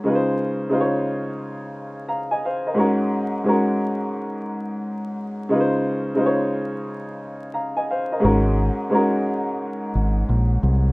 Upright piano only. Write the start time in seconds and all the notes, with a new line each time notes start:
0.04 C#3 G#3 D#4 F4
0.09 B4
0.15 C5
0.69 C#3 G#3 D#4 F4
0.74 C5
0.81 C#5
2.08 F5 A#5
2.31 D#5 G#5
2.45 C5 F5
2.67 A#4 D#5
2.74 G#2 G#3 C#4 F#4
2.79 A#4
3.44 G#2 G#3 C#4 F#4
3.49 A#4
5.49 C#3 G#3 D#4 F4
5.54 B4
5.60 C5
6.14 C#3 G#3 D#4 F4
6.19 C5
6.26 C#5
7.54 F5 A#5
7.76 D#5 G#5
7.91 C5 F5
8.12 A#4 D#5
8.20 G#2 G#3 C#4 F#4
8.25 A#4
8.90 G#2 G#3 C#4 F#4
8.95 A#4